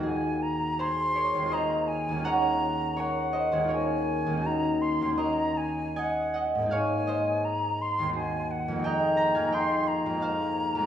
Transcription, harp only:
0.00 1.33 D#2 soft
0.00 1.37 A#3 soft
0.00 2.30 D#4 soft
0.00 1.44 F4 soft
0.00 3.89 F#4 soft
0.00 0.79 G#4 soft
0.00 1.15 A#4 soft
0.00 1.50 D#5 soft
0.79 1.48 G#4 soft
0.79 1.41 C5 medium
1.16 2.97 A#4 soft
1.16 1.55 C#5 medium
1.35 2.08 D#2 soft
1.35 2.11 A#3 soft
1.42 2.23 C4 soft
1.42 2.17 F4 soft
1.49 2.22 G#4 soft
1.49 2.28 C5 medium
1.49 2.28 D#5 medium
2.09 3.51 D#2 soft
2.09 3.56 A#3 soft
2.16 3.59 C#4 soft
2.16 3.63 F4 soft
2.23 3.52 G#4 soft
2.23 2.96 C#5 medium
2.23 6.15 F#5 medium
2.97 3.69 A#4 medium
2.97 3.68 C#5 medium
3.33 3.50 C5 soft
3.33 3.65 D#5 medium
3.52 4.25 D#2 soft
3.52 3.66 G#4 soft
3.52 3.84 C5 medium
3.57 4.28 A#3 soft
3.57 4.32 C#4 soft
3.64 4.44 F4 soft
3.64 4.46 G#4 soft
3.69 5.18 A#4 medium
3.69 6.71 C#5 medium
4.26 5.00 D#2 soft
4.26 5.04 A#3 soft
4.33 5.07 C#4 soft
4.33 5.11 D#4 soft
4.41 5.14 F#4 soft
5.01 6.66 D#2 soft
5.01 6.57 A#3 soft
5.09 6.70 C#4 soft
5.09 6.64 D#4 soft
5.15 6.73 F#4 soft
5.15 9.09 A#4 soft
5.15 5.95 D#5 medium
5.96 6.34 D#5 medium
5.96 6.60 G#5 medium
6.34 7.06 D#5 soft
6.34 6.74 F#5 medium
6.55 8.09 G#2 soft
6.55 8.01 A#3 soft
6.62 8.05 C4 soft
6.62 8.08 D#4 soft
6.69 8.16 G#4 soft
6.69 8.18 C#5 medium
6.69 7.33 F5 medium
7.07 10.22 C5 medium
7.07 8.84 D#5 medium
7.99 8.79 D#2 soft
7.99 8.70 A#3 soft
8.06 8.74 C4 soft
8.06 8.78 D#4 soft
8.13 8.86 F#4 soft
8.68 9.35 F2 soft
8.68 9.39 A#3 soft
8.76 9.42 C4 soft
8.76 9.46 D#4 soft
8.82 9.49 G#4 soft
8.82 9.52 D#5 medium
8.82 9.17 G5 medium
9.17 9.51 G5 medium
9.17 10.86 A#5 medium
9.35 10.05 F2 soft
9.35 10.21 F5 medium
9.35 9.65 G#5 medium
9.40 10.09 A#3 soft
9.40 10.12 C4 soft
9.47 10.16 D#4 soft
9.47 10.19 G#4 soft
9.52 10.86 D#5 soft
9.52 10.86 G5 medium
10.06 10.74 F2 soft
10.10 10.86 A#3 soft
10.10 10.86 C4 soft
10.17 10.84 D#4 soft
10.17 10.86 G#4 soft
10.22 10.86 C5 medium
10.22 10.86 F5 medium
10.75 10.86 F2 medium
10.75 10.86 G#3 soft
10.82 10.86 B3 soft

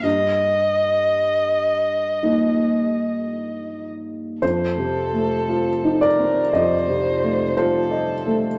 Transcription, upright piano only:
0.03 4.38 G2 soft
2.23 4.38 A#3 soft
2.23 4.38 D#4 soft
2.23 4.38 D#5 soft
4.42 6.50 F2 soft
4.42 5.97 C5 medium
4.78 5.34 C3 soft
5.13 5.70 A3 soft
5.49 6.05 F4 soft
5.84 6.40 D#4 soft
6.01 6.50 D5 medium
6.19 6.75 C4 soft
6.53 8.57 F2 soft
6.53 7.53 D#5 medium
6.88 7.43 C3 soft
7.23 7.78 A3 soft
7.57 8.13 F4 soft
7.57 8.57 C5 medium
7.91 8.47 D#5 soft
8.26 8.58 A3 soft

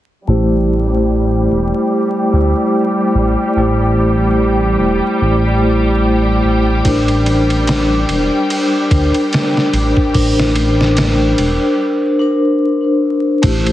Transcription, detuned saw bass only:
0.28 1.48 A1 medium
1.52 1.72 E1 medium
2.33 2.54 D2 medium
3.15 3.36 A1 medium
3.56 4.76 A1 medium
4.79 5.00 E1 medium
5.22 6.41 A1 loud
6.45 6.81 A1 medium
6.85 8.05 A1 medium
8.09 8.29 E1 medium
8.91 9.12 D2 medium
9.73 9.94 A1 medium
10.15 11.34 A1 loud
11.38 11.58 E1 medium
13.43 13.72 A1 medium

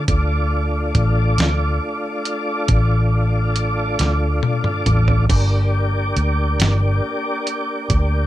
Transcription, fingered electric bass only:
0.09 0.91 D2 medium
0.95 1.35 A1 medium
1.38 1.78 D2 medium
2.69 3.95 A1 medium
4.00 4.39 D2 medium
4.86 5.26 A1 medium
5.30 6.13 G1 medium
6.17 6.56 D2 medium
6.59 7.00 G1 medium
7.90 8.27 D2 medium

